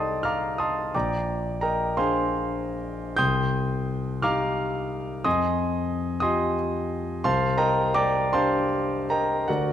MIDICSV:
0, 0, Header, 1, 2, 480
1, 0, Start_track
1, 0, Tempo, 696864
1, 647, Time_signature, 6, 3, 24, 8
1, 1118, Tempo, 744417
1, 1598, Tempo, 816327
1, 2078, Tempo, 711744
1, 2558, Tempo, 668896
1, 4478, Tempo, 692841
1, 5438, Tempo, 762389
1, 6552, End_track
2, 0, Start_track
2, 0, Title_t, "Grand piano"
2, 0, Program_c, 0, 0
2, 0, Control_c, 0, 64, 127
2, 0, Note_on_c, 0, 36, 42
2, 0, Note_on_c, 0, 63, 33
2, 0, Note_on_c, 0, 69, 37
2, 0, Note_on_c, 0, 72, 56
2, 0, Note_on_c, 0, 74, 54
2, 0, Note_on_c, 0, 75, 51
2, 0, Note_on_c, 0, 77, 53
2, 0, Note_on_c, 0, 79, 50
2, 0, Note_on_c, 0, 81, 56
2, 0, Note_on_c, 0, 82, 55
2, 0, Note_on_c, 0, 84, 57
2, 0, Note_on_c, 0, 86, 69
2, 0, Note_on_c, 0, 87, 71
2, 153, Note_off_c, 0, 81, 0
2, 153, Note_off_c, 0, 84, 0
2, 155, Note_off_c, 0, 75, 0
2, 159, Note_on_c, 0, 89, 78
2, 167, Note_off_c, 0, 87, 0
2, 170, Note_off_c, 0, 77, 0
2, 170, Note_on_c, 0, 77, 60
2, 171, Note_off_c, 0, 82, 0
2, 171, Note_on_c, 0, 82, 59
2, 173, Note_off_c, 0, 86, 0
2, 173, Note_on_c, 0, 86, 58
2, 396, Note_off_c, 0, 77, 0
2, 396, Note_off_c, 0, 82, 0
2, 397, Note_off_c, 0, 86, 0
2, 402, Note_on_c, 0, 87, 73
2, 406, Note_on_c, 0, 75, 53
2, 407, Note_off_c, 0, 89, 0
2, 410, Note_on_c, 0, 81, 58
2, 410, Note_on_c, 0, 84, 56
2, 623, Note_off_c, 0, 63, 0
2, 624, Note_off_c, 0, 36, 0
2, 628, Note_off_c, 0, 69, 0
2, 628, Note_off_c, 0, 75, 0
2, 631, Note_off_c, 0, 81, 0
2, 631, Note_off_c, 0, 84, 0
2, 643, Note_off_c, 0, 87, 0
2, 651, Note_on_c, 0, 86, 69
2, 653, Note_off_c, 0, 79, 0
2, 653, Note_on_c, 0, 79, 50
2, 657, Note_on_c, 0, 34, 46
2, 660, Note_off_c, 0, 74, 0
2, 660, Control_c, 0, 64, 0
2, 660, Note_on_c, 0, 74, 58
2, 663, Note_on_c, 0, 82, 53
2, 664, Note_off_c, 0, 72, 0
2, 762, Control_c, 0, 64, 127
2, 1093, Note_off_c, 0, 79, 0
2, 1096, Note_off_c, 0, 74, 0
2, 1098, Note_off_c, 0, 82, 0
2, 1111, Note_on_c, 0, 82, 74
2, 1119, Note_off_c, 0, 86, 0
2, 1119, Note_on_c, 0, 79, 55
2, 1121, Note_on_c, 0, 70, 61
2, 1123, Note_on_c, 0, 75, 56
2, 1335, Note_off_c, 0, 79, 0
2, 1336, Note_off_c, 0, 70, 0
2, 1337, Note_off_c, 0, 75, 0
2, 1342, Note_on_c, 0, 84, 79
2, 1344, Note_on_c, 0, 72, 58
2, 1345, Note_on_c, 0, 77, 60
2, 1348, Note_off_c, 0, 82, 0
2, 1349, Note_on_c, 0, 80, 52
2, 1350, Note_on_c, 0, 62, 36
2, 1350, Note_on_c, 0, 68, 38
2, 2051, Note_off_c, 0, 72, 0
2, 2051, Note_off_c, 0, 77, 0
2, 2053, Note_off_c, 0, 80, 0
2, 2054, Note_off_c, 0, 62, 0
2, 2054, Note_off_c, 0, 68, 0
2, 2058, Note_off_c, 0, 34, 0
2, 2067, Note_on_c, 0, 91, 93
2, 2069, Note_off_c, 0, 84, 0
2, 2075, Note_on_c, 0, 79, 67
2, 2078, Note_on_c, 0, 84, 67
2, 2078, Note_on_c, 0, 87, 65
2, 2079, Note_on_c, 0, 36, 52
2, 2091, Control_c, 0, 64, 0
2, 2224, Control_c, 0, 64, 127
2, 2768, Note_off_c, 0, 79, 0
2, 2769, Note_off_c, 0, 87, 0
2, 2770, Note_off_c, 0, 84, 0
2, 2792, Note_off_c, 0, 91, 0
2, 2794, Note_on_c, 0, 86, 68
2, 2794, Note_on_c, 0, 89, 84
2, 2798, Note_on_c, 0, 67, 44
2, 2799, Note_on_c, 0, 63, 44
2, 2802, Note_on_c, 0, 77, 76
2, 2805, Note_on_c, 0, 82, 66
2, 3504, Note_off_c, 0, 86, 0
2, 3506, Note_off_c, 0, 67, 0
2, 3507, Note_off_c, 0, 36, 0
2, 3507, Note_off_c, 0, 63, 0
2, 3508, Note_off_c, 0, 77, 0
2, 3510, Note_off_c, 0, 82, 0
2, 3526, Note_on_c, 0, 87, 89
2, 3528, Note_on_c, 0, 84, 69
2, 3530, Note_on_c, 0, 80, 68
2, 3531, Note_on_c, 0, 41, 51
2, 3533, Note_off_c, 0, 89, 0
2, 3533, Note_on_c, 0, 75, 71
2, 3546, Control_c, 0, 64, 0
2, 3637, Control_c, 0, 64, 127
2, 4203, Note_off_c, 0, 87, 0
2, 4205, Note_off_c, 0, 84, 0
2, 4206, Note_off_c, 0, 80, 0
2, 4207, Note_off_c, 0, 75, 0
2, 4214, Note_on_c, 0, 87, 87
2, 4224, Note_on_c, 0, 67, 48
2, 4226, Note_on_c, 0, 65, 40
2, 4226, Note_on_c, 0, 75, 64
2, 4226, Note_on_c, 0, 80, 65
2, 4230, Note_on_c, 0, 84, 70
2, 4454, Note_off_c, 0, 75, 0
2, 4455, Note_off_c, 0, 80, 0
2, 4457, Note_off_c, 0, 84, 0
2, 4466, Note_off_c, 0, 87, 0
2, 4913, Note_off_c, 0, 67, 0
2, 4914, Note_off_c, 0, 65, 0
2, 4917, Note_off_c, 0, 41, 0
2, 4943, Note_on_c, 0, 84, 94
2, 4945, Note_on_c, 0, 36, 56
2, 4947, Note_on_c, 0, 77, 76
2, 4948, Note_on_c, 0, 81, 68
2, 4951, Note_on_c, 0, 72, 67
2, 4959, Control_c, 0, 64, 0
2, 5077, Control_c, 0, 64, 127
2, 5171, Note_off_c, 0, 77, 0
2, 5171, Note_off_c, 0, 81, 0
2, 5173, Note_off_c, 0, 72, 0
2, 5174, Note_on_c, 0, 82, 88
2, 5175, Note_on_c, 0, 75, 71
2, 5178, Note_on_c, 0, 79, 66
2, 5182, Note_on_c, 0, 70, 72
2, 5185, Note_off_c, 0, 84, 0
2, 5413, Note_off_c, 0, 75, 0
2, 5415, Note_off_c, 0, 79, 0
2, 5417, Note_off_c, 0, 70, 0
2, 5421, Note_off_c, 0, 82, 0
2, 5429, Note_on_c, 0, 86, 99
2, 5432, Note_on_c, 0, 82, 71
2, 5433, Note_on_c, 0, 79, 67
2, 5436, Note_on_c, 0, 74, 77
2, 5652, Note_off_c, 0, 79, 0
2, 5652, Note_off_c, 0, 82, 0
2, 5654, Note_off_c, 0, 74, 0
2, 5667, Note_off_c, 0, 86, 0
2, 5672, Note_on_c, 0, 84, 88
2, 5677, Note_on_c, 0, 81, 70
2, 5679, Note_on_c, 0, 77, 68
2, 5680, Note_on_c, 0, 72, 67
2, 5681, Note_on_c, 0, 62, 40
2, 5685, Note_on_c, 0, 67, 47
2, 6125, Note_off_c, 0, 81, 0
2, 6126, Note_off_c, 0, 72, 0
2, 6126, Note_off_c, 0, 77, 0
2, 6147, Note_off_c, 0, 84, 0
2, 6158, Note_on_c, 0, 82, 82
2, 6160, Note_on_c, 0, 70, 52
2, 6164, Note_on_c, 0, 79, 61
2, 6165, Note_on_c, 0, 75, 60
2, 6367, Note_off_c, 0, 36, 0
2, 6373, Note_off_c, 0, 62, 0
2, 6375, Note_off_c, 0, 67, 0
2, 6383, Note_off_c, 0, 70, 0
2, 6386, Note_off_c, 0, 75, 0
2, 6386, Note_off_c, 0, 79, 0
2, 6395, Note_on_c, 0, 78, 69
2, 6399, Note_off_c, 0, 82, 0
2, 6404, Control_c, 0, 64, 0
2, 6405, Note_on_c, 0, 70, 57
2, 6406, Note_on_c, 0, 66, 58
2, 6407, Note_on_c, 0, 74, 55
2, 6408, Note_on_c, 0, 38, 46
2, 6528, Control_c, 0, 64, 127
2, 6552, Note_off_c, 0, 38, 0
2, 6552, Note_off_c, 0, 66, 0
2, 6552, Note_off_c, 0, 70, 0
2, 6552, Note_off_c, 0, 74, 0
2, 6552, Note_off_c, 0, 78, 0
2, 6552, End_track
0, 0, End_of_file